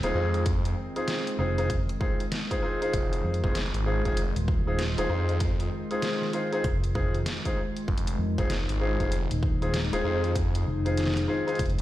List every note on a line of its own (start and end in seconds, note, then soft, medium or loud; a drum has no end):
0.00 0.13 D#1 loud
0.00 11.82 D#3 medium
0.00 11.82 G#3 medium
0.00 2.93 C4 medium
0.00 0.13 C4 loud
0.00 0.13 D#4 medium
0.00 0.13 F4 medium
0.00 0.13 G#4 loud
0.00 closed hi-hat medium
0.15 0.75 F2 loud
0.15 0.41 C4 loud
0.15 0.41 D#4 medium
0.15 0.41 F4 medium
0.15 0.41 G#4 loud
0.34 closed hi-hat soft
0.46 kick loud
0.46 closed hi-hat medium
0.65 closed hi-hat medium
0.96 1.36 C4 medium
0.96 1.36 D#4 medium
0.96 1.36 F4 medium
0.96 1.36 G#4 medium
0.96 cross-stick soft
0.96 closed hi-hat soft
1.08 snare loud
1.08 closed hi-hat medium
1.27 closed hi-hat medium
1.39 1.86 F1 loud
1.39 1.55 C4 medium
1.39 1.55 D#4 medium
1.39 1.55 F4 medium
1.39 1.55 G#4 medium
1.58 1.70 C4 loud
1.58 1.70 D#4 medium
1.58 1.70 F4 medium
1.58 1.70 G#4 loud
1.58 closed hi-hat soft
1.70 kick loud
1.70 closed hi-hat medium
1.89 closed hi-hat medium
2.00 2.20 C4 medium
2.00 2.20 D#4 medium
2.00 2.20 F4 medium
2.00 2.20 G#4 medium
2.00 kick loud
2.00 cross-stick soft
2.20 closed hi-hat soft
2.32 snare loud
2.32 closed hi-hat medium
2.51 2.61 C4 loud
2.51 2.61 D#4 medium
2.51 2.61 F4 medium
2.51 2.61 G#4 loud
2.51 kick medium
2.51 closed hi-hat soft
2.63 2.79 C4 loud
2.63 2.79 D#4 medium
2.63 2.79 F4 medium
2.63 2.79 G#4 loud
2.63 cross-stick soft
2.82 3.39 C4 medium
2.82 3.39 D#4 medium
2.82 3.39 F4 medium
2.82 3.39 G#4 loud
2.82 closed hi-hat soft
2.93 3.22 F1 loud
2.93 7.88 F4 medium
2.93 kick loud
2.93 closed hi-hat medium
3.13 closed hi-hat medium
3.24 3.41 F2 loud
3.34 closed hi-hat soft
3.44 3.72 F1 loud
3.44 3.55 C4 medium
3.44 3.55 D#4 medium
3.44 3.55 F4 medium
3.44 3.55 G#4 loud
3.44 kick loud
3.55 snare loud
3.55 closed hi-hat medium
3.74 4.02 G#1 medium
3.74 closed hi-hat soft
3.86 4.03 C4 medium
3.86 4.03 D#4 medium
3.86 4.02 F4 medium
3.86 4.03 G#4 medium
4.05 4.33 F1 loud
4.05 4.17 C4 medium
4.05 4.17 D#4 medium
4.05 4.17 F4 medium
4.05 4.17 G#4 loud
4.05 kick medium
4.05 closed hi-hat soft
4.17 closed hi-hat medium
4.36 4.95 D#1 medium
4.36 closed hi-hat medium
4.48 kick loud
4.48 cross-stick soft
4.67 4.79 C4 medium
4.67 4.79 D#4 medium
4.67 4.79 F4 medium
4.67 4.79 G#4 medium
4.79 snare loud
4.79 closed hi-hat medium
4.98 5.08 D#1 loud
4.98 5.08 C4 loud
4.98 5.08 D#4 medium
4.98 5.08 F4 medium
4.98 5.08 G#4 loud
4.98 closed hi-hat medium
5.10 5.70 F2 loud
5.10 5.36 C4 loud
5.10 5.36 D#4 medium
5.10 5.36 F4 medium
5.10 5.36 G#4 loud
5.29 closed hi-hat soft
5.40 kick loud
5.40 closed hi-hat medium
5.60 closed hi-hat medium
5.91 6.31 C4 medium
5.91 6.31 D#4 medium
5.91 6.31 F4 medium
5.91 6.31 G#4 medium
5.91 cross-stick soft
5.91 closed hi-hat soft
6.02 snare loud
6.02 closed hi-hat medium
6.22 snare soft
6.33 6.50 C4 medium
6.33 6.50 D#4 medium
6.33 6.50 F4 medium
6.33 6.50 G#4 medium
6.33 closed hi-hat soft
6.52 6.64 C4 loud
6.52 6.64 D#4 medium
6.52 6.64 F4 medium
6.52 6.64 G#4 loud
6.52 closed hi-hat soft
6.64 7.24 F1 loud
6.64 kick loud
6.64 closed hi-hat medium
6.84 closed hi-hat soft
6.95 7.15 C4 medium
6.95 7.15 D#4 medium
6.95 7.15 F4 medium
6.95 7.15 G#4 loud
6.95 kick loud
6.95 cross-stick soft
7.14 closed hi-hat soft
7.26 snare loud
7.26 closed hi-hat medium
7.45 7.57 C4 medium
7.45 7.57 D#4 medium
7.45 7.57 F4 medium
7.45 7.57 G#4 loud
7.45 kick medium
7.45 closed hi-hat soft
7.57 cross-stick soft
7.77 closed hi-hat soft
7.88 8.17 F1 loud
7.88 11.82 D#4 loud
7.88 kick loud
7.98 closed hi-hat medium
8.07 closed hi-hat medium
8.19 8.35 F2 loud
8.38 8.66 F1 loud
8.38 8.50 C4 medium
8.38 8.50 D#4 medium
8.38 8.50 F4 medium
8.38 8.50 G#4 loud
8.38 kick loud
8.38 closed hi-hat soft
8.50 snare loud
8.50 closed hi-hat medium
8.69 8.97 G#1 medium
8.69 closed hi-hat medium
8.81 8.97 C4 medium
8.81 8.97 D#4 medium
8.81 8.97 F4 medium
8.81 8.97 G#4 medium
9.00 9.28 F1 medium
9.00 9.12 C4 medium
9.00 9.12 D#4 medium
9.00 9.12 F4 medium
9.00 9.12 G#4 loud
9.00 kick medium
9.00 closed hi-hat soft
9.12 closed hi-hat medium
9.31 9.90 D#1 loud
9.31 closed hi-hat medium
9.43 kick loud
9.62 9.74 C4 medium
9.62 9.74 D#4 medium
9.62 9.74 F4 medium
9.62 9.74 G#4 medium
9.62 closed hi-hat soft
9.74 snare loud
9.74 closed hi-hat medium
9.93 10.03 D#1 loud
9.93 10.03 C4 loud
9.93 10.03 D#4 medium
9.93 10.03 F4 medium
9.93 10.03 G#4 loud
9.93 closed hi-hat medium
10.04 10.65 F2 loud
10.04 10.31 C4 loud
10.04 10.31 D#4 medium
10.04 10.31 F4 medium
10.04 10.31 G#4 loud
10.24 closed hi-hat soft
10.35 kick loud
10.35 closed hi-hat medium
10.55 closed hi-hat medium
10.66 11.26 F1 medium
10.85 11.25 C4 medium
10.85 11.25 D#4 medium
10.85 11.25 F4 medium
10.85 11.25 G#4 medium
10.85 cross-stick soft
10.85 closed hi-hat soft
10.97 snare medium
10.97 closed hi-hat medium
11.01 snare medium
11.04 snare medium
11.07 snare medium
11.14 snare loud
11.17 snare soft
11.17 closed hi-hat medium
11.28 11.45 C4 medium
11.28 11.45 D#4 medium
11.28 11.45 F4 medium
11.28 11.45 G#4 medium
11.47 11.59 C4 medium
11.47 11.59 D#4 medium
11.47 11.59 F4 medium
11.47 11.59 G#4 loud
11.47 closed hi-hat soft
11.55 11.75 F1 medium
11.55 kick loud
11.55 closed hi-hat soft
11.59 closed hi-hat medium
11.66 closed hi-hat soft
11.70 closed hi-hat soft
11.79 11.82 D#1 loud
11.79 closed hi-hat medium